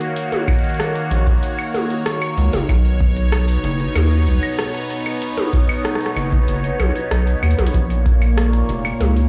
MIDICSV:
0, 0, Header, 1, 4, 480
1, 0, Start_track
1, 0, Tempo, 631579
1, 125, Time_signature, 4, 2, 24, 8
1, 7060, End_track
2, 0, Start_track
2, 0, Title_t, "Analog synth pad"
2, 0, Program_c, 0, 89
2, 0, Note_on_c, 0, 51, 79
2, 0, Note_on_c, 0, 58, 89
2, 0, Note_on_c, 0, 66, 93
2, 0, Note_on_c, 0, 73, 85
2, 2044, Note_off_c, 0, 51, 0
2, 2044, Note_off_c, 0, 58, 0
2, 2045, Note_on_c, 0, 47, 83
2, 2300, Note_on_c, 0, 63, 87
2, 2399, Note_on_c, 0, 59, 78
2, 3249, Note_off_c, 0, 66, 0
2, 5885, Note_off_c, 0, 47, 0
2, 5885, Note_on_c, 0, 46, 95
2, 5886, Note_off_c, 0, 59, 0
2, 5969, Note_on_c, 0, 58, 83
2, 6766, Note_off_c, 0, 63, 0
2, 6991, Note_on_c, 0, 68, 76
2, 7060, Note_off_c, 0, 46, 0
2, 7060, Note_off_c, 0, 58, 0
2, 7060, Note_off_c, 0, 68, 0
2, 7060, Note_off_c, 0, 73, 0
2, 7060, End_track
3, 0, Start_track
3, 0, Title_t, "Analog synth bass"
3, 0, Program_c, 1, 38
3, 844, Note_on_c, 1, 34, 103
3, 1023, Note_off_c, 1, 34, 0
3, 1805, Note_on_c, 1, 37, 92
3, 1894, Note_off_c, 1, 37, 0
3, 1925, Note_on_c, 1, 30, 94
3, 2015, Note_off_c, 1, 30, 0
3, 2044, Note_on_c, 1, 35, 99
3, 2716, Note_off_c, 1, 35, 0
3, 2765, Note_on_c, 1, 30, 101
3, 2944, Note_off_c, 1, 30, 0
3, 3004, Note_on_c, 1, 39, 90
3, 3245, Note_on_c, 1, 35, 86
3, 3256, Note_off_c, 1, 39, 0
3, 3334, Note_off_c, 1, 35, 0
3, 4684, Note_on_c, 1, 30, 102
3, 4864, Note_off_c, 1, 30, 0
3, 4925, Note_on_c, 1, 30, 83
3, 5104, Note_off_c, 1, 30, 0
3, 5164, Note_on_c, 1, 35, 106
3, 5254, Note_off_c, 1, 35, 0
3, 5404, Note_on_c, 1, 35, 97
3, 5584, Note_off_c, 1, 35, 0
3, 5644, Note_on_c, 1, 39, 83
3, 5734, Note_off_c, 1, 39, 0
3, 5764, Note_on_c, 1, 35, 82
3, 5854, Note_off_c, 1, 35, 0
3, 5884, Note_on_c, 1, 34, 99
3, 6556, Note_off_c, 1, 34, 0
3, 6605, Note_on_c, 1, 29, 103
3, 6784, Note_off_c, 1, 29, 0
3, 6844, Note_on_c, 1, 37, 91
3, 7060, Note_off_c, 1, 37, 0
3, 7060, End_track
4, 0, Start_track
4, 0, Title_t, "Drums"
4, 5, Note_on_c, 9, 42, 40
4, 81, Note_off_c, 9, 42, 0
4, 124, Note_on_c, 9, 42, 87
4, 200, Note_off_c, 9, 42, 0
4, 245, Note_on_c, 9, 42, 38
4, 245, Note_on_c, 9, 48, 97
4, 321, Note_off_c, 9, 42, 0
4, 321, Note_off_c, 9, 48, 0
4, 364, Note_on_c, 9, 36, 105
4, 365, Note_on_c, 9, 42, 57
4, 365, Note_on_c, 9, 75, 77
4, 405, Note_off_c, 9, 42, 0
4, 405, Note_on_c, 9, 42, 49
4, 440, Note_off_c, 9, 36, 0
4, 441, Note_off_c, 9, 75, 0
4, 445, Note_off_c, 9, 42, 0
4, 445, Note_on_c, 9, 42, 39
4, 485, Note_off_c, 9, 42, 0
4, 485, Note_on_c, 9, 42, 37
4, 525, Note_off_c, 9, 42, 0
4, 525, Note_on_c, 9, 42, 26
4, 565, Note_off_c, 9, 42, 0
4, 565, Note_on_c, 9, 42, 22
4, 606, Note_off_c, 9, 42, 0
4, 606, Note_on_c, 9, 37, 120
4, 606, Note_on_c, 9, 42, 92
4, 682, Note_off_c, 9, 37, 0
4, 682, Note_off_c, 9, 42, 0
4, 725, Note_on_c, 9, 42, 38
4, 801, Note_off_c, 9, 42, 0
4, 845, Note_on_c, 9, 42, 64
4, 921, Note_off_c, 9, 42, 0
4, 964, Note_on_c, 9, 36, 81
4, 965, Note_on_c, 9, 42, 38
4, 1040, Note_off_c, 9, 36, 0
4, 1041, Note_off_c, 9, 42, 0
4, 1085, Note_on_c, 9, 42, 88
4, 1161, Note_off_c, 9, 42, 0
4, 1206, Note_on_c, 9, 42, 38
4, 1206, Note_on_c, 9, 75, 54
4, 1282, Note_off_c, 9, 42, 0
4, 1282, Note_off_c, 9, 75, 0
4, 1326, Note_on_c, 9, 42, 36
4, 1326, Note_on_c, 9, 48, 88
4, 1402, Note_off_c, 9, 42, 0
4, 1402, Note_off_c, 9, 48, 0
4, 1445, Note_on_c, 9, 42, 38
4, 1521, Note_off_c, 9, 42, 0
4, 1565, Note_on_c, 9, 37, 116
4, 1565, Note_on_c, 9, 42, 90
4, 1641, Note_off_c, 9, 37, 0
4, 1641, Note_off_c, 9, 42, 0
4, 1685, Note_on_c, 9, 42, 39
4, 1685, Note_on_c, 9, 75, 79
4, 1761, Note_off_c, 9, 42, 0
4, 1761, Note_off_c, 9, 75, 0
4, 1805, Note_on_c, 9, 42, 60
4, 1881, Note_off_c, 9, 42, 0
4, 1925, Note_on_c, 9, 42, 38
4, 1925, Note_on_c, 9, 48, 99
4, 2001, Note_off_c, 9, 42, 0
4, 2001, Note_off_c, 9, 48, 0
4, 2044, Note_on_c, 9, 36, 80
4, 2046, Note_on_c, 9, 42, 87
4, 2046, Note_on_c, 9, 75, 55
4, 2120, Note_off_c, 9, 36, 0
4, 2122, Note_off_c, 9, 42, 0
4, 2122, Note_off_c, 9, 75, 0
4, 2165, Note_on_c, 9, 42, 39
4, 2241, Note_off_c, 9, 42, 0
4, 2284, Note_on_c, 9, 36, 100
4, 2360, Note_off_c, 9, 36, 0
4, 2406, Note_on_c, 9, 42, 38
4, 2482, Note_off_c, 9, 42, 0
4, 2526, Note_on_c, 9, 37, 113
4, 2526, Note_on_c, 9, 42, 94
4, 2526, Note_on_c, 9, 75, 56
4, 2602, Note_off_c, 9, 37, 0
4, 2602, Note_off_c, 9, 42, 0
4, 2602, Note_off_c, 9, 75, 0
4, 2646, Note_on_c, 9, 42, 38
4, 2722, Note_off_c, 9, 42, 0
4, 2766, Note_on_c, 9, 42, 66
4, 2842, Note_off_c, 9, 42, 0
4, 2886, Note_on_c, 9, 42, 40
4, 2962, Note_off_c, 9, 42, 0
4, 3006, Note_on_c, 9, 42, 90
4, 3006, Note_on_c, 9, 48, 100
4, 3006, Note_on_c, 9, 75, 83
4, 3082, Note_off_c, 9, 42, 0
4, 3082, Note_off_c, 9, 48, 0
4, 3082, Note_off_c, 9, 75, 0
4, 3125, Note_on_c, 9, 42, 38
4, 3201, Note_off_c, 9, 42, 0
4, 3246, Note_on_c, 9, 42, 35
4, 3322, Note_off_c, 9, 42, 0
4, 3366, Note_on_c, 9, 42, 39
4, 3366, Note_on_c, 9, 75, 54
4, 3442, Note_off_c, 9, 42, 0
4, 3442, Note_off_c, 9, 75, 0
4, 3485, Note_on_c, 9, 37, 114
4, 3485, Note_on_c, 9, 42, 92
4, 3561, Note_off_c, 9, 37, 0
4, 3561, Note_off_c, 9, 42, 0
4, 3605, Note_on_c, 9, 42, 39
4, 3681, Note_off_c, 9, 42, 0
4, 3726, Note_on_c, 9, 42, 63
4, 3802, Note_off_c, 9, 42, 0
4, 3845, Note_on_c, 9, 42, 39
4, 3845, Note_on_c, 9, 75, 54
4, 3921, Note_off_c, 9, 42, 0
4, 3921, Note_off_c, 9, 75, 0
4, 3965, Note_on_c, 9, 42, 93
4, 4041, Note_off_c, 9, 42, 0
4, 4085, Note_on_c, 9, 42, 42
4, 4085, Note_on_c, 9, 48, 99
4, 4161, Note_off_c, 9, 42, 0
4, 4161, Note_off_c, 9, 48, 0
4, 4205, Note_on_c, 9, 36, 102
4, 4205, Note_on_c, 9, 42, 64
4, 4281, Note_off_c, 9, 36, 0
4, 4281, Note_off_c, 9, 42, 0
4, 4325, Note_on_c, 9, 42, 39
4, 4325, Note_on_c, 9, 75, 81
4, 4401, Note_off_c, 9, 42, 0
4, 4401, Note_off_c, 9, 75, 0
4, 4445, Note_on_c, 9, 37, 111
4, 4445, Note_on_c, 9, 42, 95
4, 4521, Note_off_c, 9, 37, 0
4, 4521, Note_off_c, 9, 42, 0
4, 4525, Note_on_c, 9, 37, 93
4, 4565, Note_on_c, 9, 42, 41
4, 4601, Note_off_c, 9, 37, 0
4, 4605, Note_on_c, 9, 37, 71
4, 4641, Note_off_c, 9, 42, 0
4, 4681, Note_off_c, 9, 37, 0
4, 4685, Note_on_c, 9, 42, 68
4, 4685, Note_on_c, 9, 75, 57
4, 4761, Note_off_c, 9, 42, 0
4, 4761, Note_off_c, 9, 75, 0
4, 4804, Note_on_c, 9, 36, 83
4, 4805, Note_on_c, 9, 42, 40
4, 4880, Note_off_c, 9, 36, 0
4, 4881, Note_off_c, 9, 42, 0
4, 4925, Note_on_c, 9, 42, 97
4, 5001, Note_off_c, 9, 42, 0
4, 5046, Note_on_c, 9, 42, 41
4, 5122, Note_off_c, 9, 42, 0
4, 5165, Note_on_c, 9, 42, 38
4, 5165, Note_on_c, 9, 48, 85
4, 5165, Note_on_c, 9, 75, 57
4, 5241, Note_off_c, 9, 42, 0
4, 5241, Note_off_c, 9, 48, 0
4, 5241, Note_off_c, 9, 75, 0
4, 5286, Note_on_c, 9, 42, 41
4, 5362, Note_off_c, 9, 42, 0
4, 5405, Note_on_c, 9, 37, 117
4, 5405, Note_on_c, 9, 42, 98
4, 5481, Note_off_c, 9, 37, 0
4, 5481, Note_off_c, 9, 42, 0
4, 5525, Note_on_c, 9, 42, 40
4, 5601, Note_off_c, 9, 42, 0
4, 5645, Note_on_c, 9, 42, 54
4, 5645, Note_on_c, 9, 75, 81
4, 5705, Note_off_c, 9, 42, 0
4, 5705, Note_on_c, 9, 42, 65
4, 5721, Note_off_c, 9, 75, 0
4, 5765, Note_off_c, 9, 42, 0
4, 5765, Note_on_c, 9, 42, 76
4, 5765, Note_on_c, 9, 48, 97
4, 5825, Note_off_c, 9, 42, 0
4, 5825, Note_on_c, 9, 42, 85
4, 5841, Note_off_c, 9, 48, 0
4, 5884, Note_on_c, 9, 36, 85
4, 5885, Note_off_c, 9, 42, 0
4, 5885, Note_on_c, 9, 42, 96
4, 5960, Note_off_c, 9, 36, 0
4, 5961, Note_off_c, 9, 42, 0
4, 6005, Note_on_c, 9, 42, 42
4, 6081, Note_off_c, 9, 42, 0
4, 6124, Note_on_c, 9, 36, 109
4, 6125, Note_on_c, 9, 42, 68
4, 6200, Note_off_c, 9, 36, 0
4, 6201, Note_off_c, 9, 42, 0
4, 6245, Note_on_c, 9, 42, 39
4, 6245, Note_on_c, 9, 75, 54
4, 6321, Note_off_c, 9, 42, 0
4, 6321, Note_off_c, 9, 75, 0
4, 6365, Note_on_c, 9, 37, 124
4, 6365, Note_on_c, 9, 42, 99
4, 6441, Note_off_c, 9, 37, 0
4, 6441, Note_off_c, 9, 42, 0
4, 6485, Note_on_c, 9, 42, 41
4, 6561, Note_off_c, 9, 42, 0
4, 6605, Note_on_c, 9, 42, 68
4, 6681, Note_off_c, 9, 42, 0
4, 6725, Note_on_c, 9, 42, 43
4, 6725, Note_on_c, 9, 75, 85
4, 6801, Note_off_c, 9, 42, 0
4, 6801, Note_off_c, 9, 75, 0
4, 6845, Note_on_c, 9, 42, 97
4, 6845, Note_on_c, 9, 48, 95
4, 6921, Note_off_c, 9, 42, 0
4, 6921, Note_off_c, 9, 48, 0
4, 6965, Note_on_c, 9, 42, 42
4, 7041, Note_off_c, 9, 42, 0
4, 7060, End_track
0, 0, End_of_file